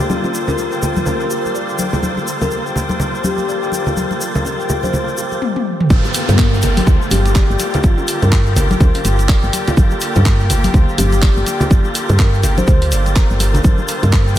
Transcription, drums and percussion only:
0.10 high conga, shaker
0.24 muted conga, shaker
0.34 shaker
0.48 low conga, shaker
0.58 muted conga, shaker
0.72 shaker
0.82 low conga, shaker
0.96 muted conga, high conga, shaker
1.06 low conga, shaker
1.20 shaker
1.30 shaker
1.46 muted conga, shaker
1.55 shaker
1.69 shaker
1.79 muted conga, high conga, shaker
1.93 low conga, shaker
2.03 high conga, shaker
2.17 muted conga, shaker
2.27 shaker
2.41 high conga, low conga, shaker
2.51 muted conga, shaker
2.67 shaker
2.76 low conga, shaker
2.89 muted conga, high conga, shaker
2.99 low conga, shaker
3.15 shaker
3.24 high conga, shaker
3.38 muted conga, shaker
3.49 shaker
3.63 shaker
3.72 muted conga, shaker
3.86 low conga, shaker
3.97 high conga, shaker
4.11 muted conga, shaker
4.21 shaker
4.35 high conga, low conga, shaker
4.45 muted conga, shaker
4.60 shaker
4.69 low conga, shaker
4.83 muted conga, high conga, shaker
4.93 low conga, shaker
5.08 shaker
5.18 shaker
5.32 muted conga, shaker
5.42 high tom
5.56 high tom
5.80 mid tom
5.90 kick, closed hi-hat, high conga, shaker
6.05 muted conga, shaker
6.14 open hi-hat, shaker
6.29 closed hi-hat, high conga, low conga, shaker
6.38 kick, clap, closed hi-hat, muted conga, shaker
6.54 shaker
6.62 open hi-hat, low conga, shaker
6.77 open hi-hat, muted conga, high conga, shaker
6.87 kick, closed hi-hat, low conga, shaker
7.02 shaker
7.11 open hi-hat, high conga, shaker
7.26 closed hi-hat, muted conga, shaker
7.35 kick, clap, closed hi-hat, shaker
7.50 shaker
7.59 open hi-hat, muted conga, shaker
7.74 closed hi-hat, low conga, shaker
7.83 kick, closed hi-hat, high conga, shaker
7.98 muted conga, shaker
8.08 open hi-hat, shaker
8.22 closed hi-hat, low conga, shaker
8.32 kick, clap, closed hi-hat, muted conga, shaker
8.46 shaker
8.56 open hi-hat, low conga, shaker
8.70 closed hi-hat, muted conga, high conga, shaker
8.80 kick, closed hi-hat, low conga, shaker
8.95 open hi-hat, shaker
9.05 open hi-hat, shaker
9.19 closed hi-hat, muted conga, shaker
9.29 kick, clap, closed hi-hat, shaker
9.43 shaker
9.53 open hi-hat, muted conga, high conga, shaker
9.67 closed hi-hat, low conga, shaker
9.77 kick, closed hi-hat, high conga, shaker
9.91 muted conga, shaker
10.01 open hi-hat, shaker
10.15 closed hi-hat, high conga, low conga, shaker
10.26 kick, clap, closed hi-hat, shaker
10.40 shaker
10.50 open hi-hat, low conga, shaker
10.64 open hi-hat, muted conga, high conga, shaker
10.74 kick, closed hi-hat, low conga, shaker
10.89 shaker
10.98 open hi-hat, high conga, shaker
11.12 closed hi-hat, muted conga, shaker
11.22 kick, clap, closed hi-hat, shaker
11.36 shaker
11.47 open hi-hat, muted conga, shaker
11.60 closed hi-hat, low conga, shaker
11.70 kick, closed hi-hat, high conga, shaker
11.85 muted conga, shaker
11.95 open hi-hat, shaker
12.09 closed hi-hat, low conga, shaker
12.19 kick, clap, closed hi-hat, muted conga, shaker
12.34 shaker
12.43 open hi-hat, low conga, shaker
12.57 closed hi-hat, muted conga, high conga, shaker
12.67 kick, closed hi-hat, low conga, shaker
12.82 open hi-hat, shaker
12.92 open hi-hat, shaker
13.06 closed hi-hat, muted conga, shaker
13.16 kick, clap, closed hi-hat, shaker
13.30 shaker
13.39 open hi-hat, muted conga, high conga, shaker
13.54 closed hi-hat, low conga, shaker
13.64 kick, closed hi-hat, high conga, shaker
13.78 muted conga, shaker
13.88 open hi-hat, shaker
14.02 closed hi-hat, high conga, low conga, shaker
14.12 kick, clap, closed hi-hat, shaker
14.28 shaker

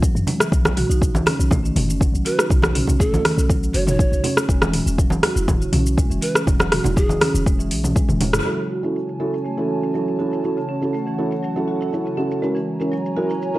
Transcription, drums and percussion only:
0.02 kick, shaker
0.16 shaker
0.27 open hi-hat, low conga
0.40 cross-stick, shaker
0.52 kick, shaker
0.65 cross-stick, high conga, shaker
0.77 open hi-hat, mid tom
0.91 shaker
1.02 kick, shaker
1.15 high conga, shaker
1.26 cross-stick, open hi-hat, high conga
1.40 shaker
1.51 kick, mid tom, high conga, low conga, shaker
1.65 shaker
1.76 open hi-hat, mid tom, high conga
1.90 shaker
2.01 kick, shaker
2.15 shaker
2.26 open hi-hat
2.39 cross-stick, shaker
2.50 kick, low conga, shaker
2.62 cross-stick, high conga, shaker
2.75 open hi-hat, mid tom
2.87 low conga, shaker
3.00 kick, shaker
3.14 high conga, shaker
3.25 cross-stick, open hi-hat, high conga
3.39 shaker
3.50 kick, shaker
3.63 shaker
3.74 open hi-hat
3.87 mid tom, high conga, shaker
3.99 kick, shaker
4.13 shaker
4.24 open hi-hat, low conga
4.37 cross-stick, shaker
4.49 kick, shaker
4.62 cross-stick, high conga, shaker
4.73 open hi-hat, mid tom
4.87 shaker
4.98 kick, shaker
5.10 high conga, shaker
5.23 cross-stick, open hi-hat, high conga
5.37 shaker
5.48 kick, mid tom, high conga, low conga, shaker
5.62 shaker
5.73 open hi-hat, mid tom, high conga
5.86 shaker
5.98 kick, shaker
6.11 shaker
6.22 open hi-hat
6.35 cross-stick, shaker
6.47 kick, low conga, shaker
6.60 cross-stick, high conga, shaker
6.72 cross-stick, open hi-hat, mid tom
6.84 low conga, shaker
6.97 kick, shaker
7.09 high conga, shaker
7.21 cross-stick, open hi-hat, high conga
7.35 shaker
7.46 kick, shaker
7.60 shaker
7.71 open hi-hat
7.84 mid tom, high conga, shaker
7.96 kick, shaker
8.08 mid tom, high tom, high conga, shaker
8.21 open hi-hat, mid tom, low conga
8.33 cross-stick, mid tom, shaker
8.46 shaker
8.59 shaker
8.84 shaker
8.96 shaker
9.09 shaker
9.34 shaker
9.45 shaker
9.58 shaker
9.83 shaker
9.95 shaker
10.08 shaker
10.33 shaker
10.45 shaker
10.57 shaker
10.82 shaker
10.94 shaker
11.07 shaker
11.32 shaker
11.44 shaker
11.57 shaker
11.82 shaker
11.93 shaker
12.06 shaker
12.31 shaker
12.43 shaker
12.56 shaker
12.81 shaker
12.93 shaker
13.06 shaker
13.30 shaker
13.42 shaker
13.55 shaker

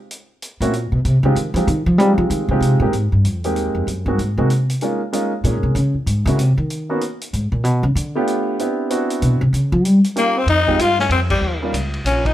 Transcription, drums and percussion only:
0.11 closed hi-hat
0.42 closed hi-hat
0.61 closed hi-hat
0.73 closed hi-hat
1.05 closed hi-hat
1.36 closed hi-hat
1.56 closed hi-hat
1.68 closed hi-hat
2.00 closed hi-hat
2.30 closed hi-hat
2.62 closed hi-hat
2.93 closed hi-hat
3.25 closed hi-hat
3.44 closed hi-hat
3.56 closed hi-hat
3.88 closed hi-hat
4.19 closed hi-hat
4.50 closed hi-hat
4.70 closed hi-hat
4.81 closed hi-hat
5.13 closed hi-hat
5.44 closed hi-hat
5.76 closed hi-hat
6.07 closed hi-hat
6.27 closed hi-hat
6.39 closed hi-hat
6.70 closed hi-hat
7.01 closed hi-hat
7.21 closed hi-hat
7.33 closed hi-hat
7.65 closed hi-hat
7.96 closed hi-hat
8.27 closed hi-hat
8.59 closed hi-hat
8.90 closed hi-hat
9.10 closed hi-hat
9.22 closed hi-hat
9.54 closed hi-hat
9.85 closed hi-hat
10.04 closed hi-hat
10.16 closed hi-hat
10.48 ride
10.68 kick
10.79 hi-hat pedal, ride
10.99 snare
11.11 ride
11.30 kick, crash
11.74 hi-hat pedal, ride
11.94 ride
12.06 hi-hat pedal, ride
12.25 kick, ride

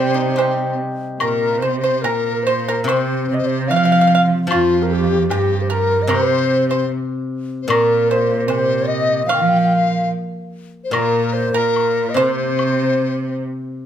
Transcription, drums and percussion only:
0.38 low woodblock
1.20 high woodblock
2.05 low woodblock
2.88 high woodblock
4.51 high woodblock
5.30 low woodblock
6.10 high woodblock
7.70 high woodblock
8.50 low woodblock
9.30 high woodblock
10.93 high woodblock
11.76 high woodblock
12.59 high woodblock

